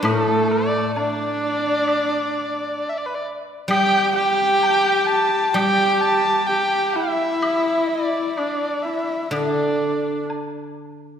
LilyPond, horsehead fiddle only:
\new Staff \with { instrumentName = "Horsehead fiddle" } { \time 4/4 \tempo 4 = 64 a4 d'2 r4 | g'8 g'4. g'4 g'8 e'8~ | e'4 d'8 e'8 d'4 r4 | }